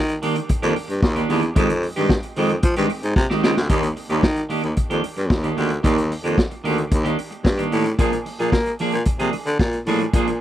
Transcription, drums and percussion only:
0.09 closed hi-hat soft
0.22 open hi-hat medium
0.36 closed hi-hat soft
0.49 kick medium
0.49 closed hi-hat medium
0.63 closed hi-hat soft
0.76 open hi-hat medium
0.90 closed hi-hat soft
1.02 kick loud
1.02 snare loud
1.16 closed hi-hat soft
1.30 open hi-hat medium
1.43 closed hi-hat medium
1.56 kick loud
1.56 closed hi-hat medium
1.70 closed hi-hat soft
1.83 open hi-hat medium
1.96 closed hi-hat soft
2.09 kick loud
2.09 snare loud
2.23 closed hi-hat soft
2.36 open hi-hat medium
2.49 closed hi-hat soft
2.63 kick loud
2.63 closed hi-hat medium
2.76 closed hi-hat soft
2.89 open hi-hat medium
3.03 closed hi-hat soft
3.16 kick loud
3.16 snare medium
3.30 snare medium
3.43 snare loud
3.57 snare medium
3.69 kick loud
3.69 closed hi-hat medium
3.83 closed hi-hat soft
3.97 open hi-hat medium
4.10 closed hi-hat soft
4.23 kick medium
4.23 snare medium
4.36 closed hi-hat soft
4.50 open hi-hat medium
4.63 closed hi-hat soft
4.76 kick medium
4.76 closed hi-hat medium
4.90 closed hi-hat soft
5.04 open hi-hat medium
5.17 closed hi-hat soft
5.30 kick loud
5.30 snare loud
5.44 closed hi-hat soft
5.57 open hi-hat soft
5.71 closed hi-hat soft
5.84 kick loud
5.84 closed hi-hat medium
5.98 closed hi-hat soft
6.12 open hi-hat medium
6.25 closed hi-hat soft
6.38 kick medium
6.38 snare loud
6.51 closed hi-hat soft
6.65 open hi-hat medium
6.78 closed hi-hat soft
6.91 kick loud
6.91 closed hi-hat medium
7.05 closed hi-hat soft
7.19 open hi-hat medium
7.32 closed hi-hat soft
7.45 kick loud
7.45 snare loud
7.59 closed hi-hat soft
7.72 open hi-hat medium
7.86 closed hi-hat soft
7.99 kick loud
7.99 closed hi-hat medium
8.13 closed hi-hat soft
8.26 open hi-hat medium
8.40 closed hi-hat soft
8.52 kick medium
8.52 snare medium
8.66 closed hi-hat soft
8.79 open hi-hat medium
8.92 closed hi-hat soft
9.05 kick medium
9.05 closed hi-hat medium
9.19 closed hi-hat soft
9.33 open hi-hat medium
9.46 closed hi-hat soft
9.59 kick loud
9.59 snare loud
9.73 closed hi-hat soft
9.86 open hi-hat medium
10.00 closed hi-hat soft
10.13 kick loud
10.13 closed hi-hat medium
10.27 closed hi-hat soft

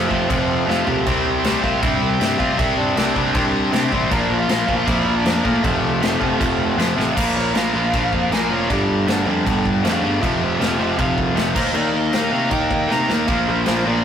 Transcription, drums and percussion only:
0.11 kick medium
0.30 kick loud
0.30 crash medium
0.70 snare medium
0.87 floor tom loud
1.07 kick loud
1.07 crash medium
1.44 snare loud
1.44 crash medium
1.64 kick medium
1.83 kick loud
1.83 crash medium
2.21 snare loud
2.21 crash medium
2.40 kick loud
2.59 kick loud
2.59 crash medium
2.97 snare loud
2.97 crash medium
3.16 kick medium
3.35 kick loud
3.35 crash medium
3.73 snare loud
3.73 crash medium
3.92 kick medium
4.11 kick loud
4.11 crash medium
4.49 snare loud
4.49 crash medium
4.69 kick medium
4.88 kick loud
4.88 crash medium
5.26 snare loud
5.26 crash medium
5.45 kick medium
5.64 kick loud
5.64 crash medium
6.03 snare loud
6.03 crash medium
6.22 kick medium
6.41 kick loud
6.41 crash medium
6.80 snare loud
6.80 crash medium
7.00 snare medium
7.17 kick loud
7.17 crash loud
7.17 crash medium
7.55 snare loud
7.55 crash medium
7.94 kick loud
7.94 crash medium
8.13 kick medium
8.32 snare loud
8.32 crash medium
8.70 kick loud
8.70 crash medium
9.08 snare loud
9.08 crash medium
9.47 kick loud
9.47 crash medium
9.65 kick medium
9.85 snare loud
9.85 crash medium
10.23 kick loud
10.23 crash medium
10.61 snare loud
10.61 crash medium
10.99 kick loud
10.99 crash medium
11.18 kick medium
11.37 snare loud
11.37 crash medium
11.56 kick loud
11.56 crash loud
11.74 crash medium
12.13 snare loud
12.13 crash medium
12.51 kick loud
12.51 crash medium
12.71 kick medium
12.91 snare medium
13.10 snare medium
13.28 kick loud
13.28 crash medium
13.66 snare loud
13.66 crash medium

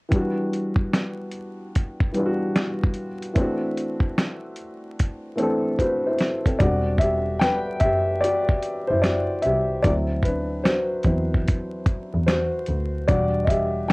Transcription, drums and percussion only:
0.12 kick loud
0.12 closed hi-hat medium
0.53 closed hi-hat medium
0.76 kick medium
0.93 snare loud
0.93 closed hi-hat medium
1.31 closed hi-hat medium
1.75 kick medium
1.75 closed hi-hat medium
2.00 kick medium
2.14 closed hi-hat medium
2.56 snare loud
2.56 closed hi-hat medium
2.83 kick medium
2.94 closed hi-hat soft
3.22 closed hi-hat soft
3.36 kick medium
3.36 closed hi-hat medium
3.77 closed hi-hat medium
4.00 kick medium
4.17 snare loud
4.17 closed hi-hat medium
4.56 closed hi-hat medium
5.00 kick medium
5.00 closed hi-hat medium
5.38 closed hi-hat medium
5.79 kick soft
5.79 closed hi-hat medium
6.18 snare medium
6.18 closed hi-hat medium
6.46 kick medium
6.46 closed hi-hat soft
6.60 kick loud
6.60 closed hi-hat medium
6.98 kick medium
6.98 closed hi-hat medium
7.41 snare loud
7.41 closed hi-hat medium
7.80 kick medium
7.80 closed hi-hat medium
8.24 closed hi-hat medium
8.49 kick medium
8.62 closed hi-hat medium
9.04 snare loud
9.04 closed hi-hat medium
9.42 closed hi-hat medium
9.84 kick loud
9.84 closed hi-hat medium
10.23 kick medium
10.23 closed hi-hat medium
10.66 snare loud
10.66 closed hi-hat medium
11.04 kick medium
11.04 closed hi-hat medium
11.34 kick medium
11.48 kick medium
11.48 closed hi-hat medium
11.86 kick medium
11.86 closed hi-hat medium
12.28 snare loud
12.28 closed hi-hat medium
12.66 closed hi-hat medium
13.08 kick loud
13.08 closed hi-hat medium
13.47 kick medium
13.47 closed hi-hat medium

